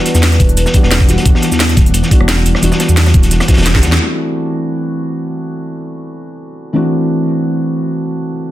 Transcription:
0.00 0.74 E3 medium
0.00 4.02 F#3 medium
0.00 0.74 G3 medium
0.00 0.74 B3 medium
0.00 0.75 D4 medium
0.00 1.09 F#4 loud
0.00 0.56 B4 medium
0.06 snare soft
0.06 closed hi-hat medium
0.15 0.39 E2 medium
0.15 snare medium
0.15 shaker medium
0.23 snare loud
0.23 closed hi-hat medium
0.23 shaker soft
0.32 cross-stick soft
0.32 snare medium
0.32 closed hi-hat soft
0.40 0.56 D1 loud
0.40 kick medium
0.40 closed hi-hat medium
0.49 closed hi-hat soft
0.57 0.65 E1 medium
0.57 1.05 B4 medium
0.57 closed hi-hat medium
0.57 shaker soft
0.66 snare medium
0.66 shaker soft
0.74 1.06 E3 medium
0.74 1.06 G3 medium
0.74 1.07 B3 medium
0.74 1.07 D4 medium
0.74 1.07 G4 medium
0.74 kick medium
0.74 closed hi-hat medium
0.83 1.07 E1 medium
0.83 snare soft
0.91 snare loud
0.91 closed hi-hat medium
0.91 shaker medium
1.00 kick medium
1.00 cross-stick soft
1.00 closed hi-hat medium
1.08 1.17 E1 loud
1.08 1.23 E3 medium
1.08 1.23 G3 medium
1.08 1.24 B3 medium
1.08 1.24 D4 medium
1.08 1.24 F#4 medium
1.08 snare soft
1.08 closed hi-hat medium
1.08 shaker soft
1.18 snare soft
1.18 closed hi-hat medium
1.24 1.34 E1 loud
1.24 2.08 E3 medium
1.24 2.09 G3 medium
1.24 2.09 B3 medium
1.24 2.10 D4 medium
1.24 2.10 F#4 medium
1.24 kick loud
1.24 closed hi-hat medium
1.24 shaker soft
1.35 snare medium
1.42 snare soft
1.42 closed hi-hat medium
1.52 1.76 E2 medium
1.52 snare soft
1.52 shaker medium
1.60 snare loud
1.60 closed hi-hat medium
1.60 shaker soft
1.69 cross-stick soft
1.69 snare soft
1.69 closed hi-hat soft
1.76 1.93 D1 loud
1.76 kick medium
1.76 snare soft
1.76 closed hi-hat medium
1.86 closed hi-hat soft
1.94 2.02 E1 medium
1.94 closed hi-hat medium
1.94 shaker medium
2.03 snare soft
2.03 shaker soft
2.10 2.60 E3 medium
2.10 2.61 G3 medium
2.10 2.61 B3 medium
2.10 2.61 D4 medium
2.10 2.62 F#4 medium
2.10 kick medium
2.10 closed hi-hat medium
2.20 2.44 E1 medium
2.20 cross-stick soft
2.28 snare loud
2.28 closed hi-hat medium
2.28 shaker soft
2.46 2.54 E1 loud
2.46 closed hi-hat medium
2.46 shaker soft
2.55 cross-stick soft
2.55 snare medium
2.61 2.71 E1 loud
2.61 3.46 E3 medium
2.61 3.46 G3 medium
2.61 3.47 B3 medium
2.61 3.47 D4 medium
2.61 3.47 F#4 loud
2.61 closed hi-hat medium
2.61 shaker soft
2.72 snare medium
2.72 shaker soft
2.80 snare loud
2.80 closed hi-hat medium
2.89 3.13 E2 medium
2.89 shaker medium
2.97 snare loud
2.97 closed hi-hat medium
2.97 shaker soft
3.06 cross-stick soft
3.06 snare loud
3.06 closed hi-hat soft
3.06 closed hi-hat medium
3.14 3.30 D1 loud
3.14 kick loud
3.14 closed hi-hat medium
3.23 snare soft
3.23 closed hi-hat soft
3.23 closed hi-hat medium
3.23 shaker soft
3.31 3.40 E1 medium
3.31 snare soft
3.31 closed hi-hat medium
3.31 shaker soft
3.40 cross-stick medium
3.40 snare loud
3.40 closed hi-hat medium
3.40 shaker soft
3.48 3.72 E3 medium
3.48 3.72 G3 medium
3.48 3.73 B3 medium
3.48 3.73 D4 medium
3.48 3.73 F#4 medium
3.48 kick medium
3.48 snare medium
3.48 closed hi-hat medium
3.53 snare medium
3.53 closed hi-hat medium
3.58 3.84 E1 medium
3.58 snare medium
3.58 closed hi-hat medium
3.61 snare medium
3.61 closed hi-hat medium
3.66 snare medium
3.66 snare loud
3.66 closed hi-hat loud
3.66 closed hi-hat medium
3.66 shaker medium
3.74 3.97 E3 medium
3.74 3.98 G3 medium
3.74 3.98 B3 medium
3.74 3.98 D4 medium
3.74 3.98 G4 medium
3.74 kick medium
3.74 snare medium
3.83 3.98 E2 medium
3.83 snare loud
3.83 closed hi-hat medium
3.83 shaker soft
3.92 snare medium
3.92 snare soft
3.99 6.71 E3 medium
3.99 6.72 A3 medium
3.99 6.72 C4 medium
3.99 6.73 D4 medium
3.99 6.73 F#4 medium
6.73 8.51 E3 medium
6.73 8.51 A3 medium
6.73 8.51 C4 medium
6.73 8.51 D4 medium
6.73 8.51 F#4 medium

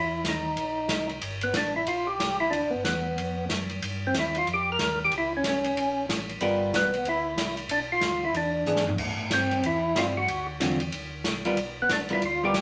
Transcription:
0.00 0.24 E2 medium
0.00 0.27 E4 loud
0.24 0.56 D#2 medium
0.24 snare medium
0.24 hi-hat pedal medium
0.24 ride medium
0.29 1.07 D#4 medium
0.56 0.88 A#1 medium
0.56 ride soft
0.89 1.21 C2 medium
0.89 snare medium
0.89 hi-hat pedal soft
0.89 ride medium
1.09 ride soft
1.21 1.53 G1 medium
1.21 ride medium
1.41 1.56 B3 medium
1.41 ride soft
1.54 1.86 A1 medium
1.54 1.74 D4 medium
1.54 snare medium
1.54 hi-hat pedal medium
1.54 ride medium
1.76 1.88 E4 medium
1.86 2.18 A#1 medium
1.86 2.08 F4 medium
1.86 ride soft
2.07 2.37 G4 medium
2.20 2.51 C2 medium
2.20 snare medium
2.20 hi-hat pedal soft
2.20 ride medium
2.40 2.53 E4 medium
2.50 2.62 D2 medium
2.50 2.71 D4 medium
2.50 ride medium
2.63 2.74 B1 soft
2.70 2.84 B3 medium
2.75 2.84 G1 medium
2.85 3.16 E2 medium
2.85 3.45 B3 medium
2.85 snare medium
2.85 hi-hat pedal medium
2.85 ride medium
3.17 3.48 F2 medium
3.17 ride soft
3.49 3.81 F#2 medium
3.49 snare medium
3.49 hi-hat pedal soft
3.49 ride medium
3.69 ride soft
3.82 4.13 G2 medium
3.82 ride medium
4.07 4.16 C4 medium
4.14 4.45 D#2 medium
4.14 snare medium
4.14 hi-hat pedal medium
4.14 ride medium
4.19 4.37 E4 medium
4.35 4.48 F4 medium
4.35 ride soft
4.47 4.78 F2 medium
4.47 ride soft
4.54 4.70 G4 medium
4.72 4.99 A#4 medium
4.79 5.10 D#2 medium
4.79 snare medium
4.79 hi-hat pedal medium
4.79 ride medium
5.05 5.14 G4 medium
5.12 5.43 C#2 medium
5.12 ride medium
5.18 5.33 E4 medium
5.37 5.46 C#4 medium
5.44 5.75 C2 medium
5.44 6.06 C#4 medium
5.44 snare medium
5.44 hi-hat pedal soft
5.44 ride medium
5.64 ride soft
5.75 6.07 A#1 medium
5.75 ride medium
6.08 6.39 A1 medium
6.08 snare medium
6.08 hi-hat pedal medium
6.08 ride medium
6.29 ride soft
6.40 6.72 G1 medium
6.40 6.89 G3 medium
6.40 6.89 B3 medium
6.40 6.89 F4 medium
6.40 6.89 A#4 medium
6.40 ride medium
6.72 7.04 B1 medium
6.72 7.07 B3 medium
6.72 snare medium
6.72 hi-hat pedal soft
6.72 ride medium
6.93 ride soft
7.04 7.36 D2 medium
7.04 ride medium
7.09 7.55 E4 medium
7.36 7.68 C2 medium
7.36 snare medium
7.36 hi-hat pedal medium
7.36 ride medium
7.57 ride soft
7.69 8.01 B1 medium
7.69 7.80 D4 medium
7.69 ride medium
7.92 8.24 F4 medium
8.01 8.33 D2 medium
8.01 snare medium
8.01 hi-hat pedal soft
8.01 ride medium
8.25 8.35 E4 medium
8.33 8.65 E2 medium
8.33 8.84 D4 medium
8.33 ride medium
8.66 8.97 G#2 medium
8.66 8.84 E3 soft
8.66 8.85 B3 soft
8.66 8.85 D4 soft
8.66 8.85 G#4 soft
8.66 hi-hat pedal medium
8.76 snare medium
8.87 floor tom medium
8.98 9.30 A2 medium
8.98 kick medium
8.98 crash medium
9.30 9.62 G2 medium
9.30 9.66 C4 medium
9.30 snare medium
9.30 hi-hat pedal medium
9.30 ride medium
9.51 ride soft
9.63 9.95 E2 medium
9.63 9.98 E4 medium
9.63 ride soft
9.95 10.27 G2 medium
9.95 10.13 G3 soft
9.95 10.14 C4 soft
9.95 10.14 E4 soft
9.95 10.06 F4 medium
9.95 snare medium
9.95 hi-hat pedal medium
9.95 ride medium
10.17 10.47 F#4 medium
10.28 10.59 D2 medium
10.28 ride medium
10.60 10.92 E2 medium
10.60 10.78 D3 medium
10.60 10.79 F#3 medium
10.60 10.78 C4 medium
10.60 10.79 F4 medium
10.60 snare medium
10.60 hi-hat pedal soft
10.60 ride medium
10.80 ride soft
10.92 11.24 D2 medium
10.92 ride medium
11.24 11.56 C2 medium
11.24 snare medium
11.24 hi-hat pedal soft
11.24 ride medium
11.45 11.56 G3 medium
11.45 11.57 B3 medium
11.45 11.56 F4 medium
11.45 11.57 A#4 medium
11.45 ride soft
11.57 11.89 B1 medium
11.57 ride medium
11.82 11.91 B3 medium
11.89 12.21 A#1 medium
11.89 12.01 D4 medium
11.89 snare medium
11.89 hi-hat pedal medium
11.89 ride medium
12.09 12.21 G3 medium
12.09 12.21 B3 medium
12.09 12.22 F4 medium
12.09 12.22 A#4 medium
12.09 ride soft
12.13 12.23 E4 medium
12.22 12.54 D2 medium
12.22 12.44 F4 medium
12.22 ride soft
12.43 12.54 G3 medium
12.43 12.54 B3 medium
12.43 12.55 F4 medium
12.43 12.61 G4 loud
12.43 12.55 A#4 medium
12.54 12.61 C2 medium
12.54 snare medium
12.54 hi-hat pedal medium
12.54 ride medium

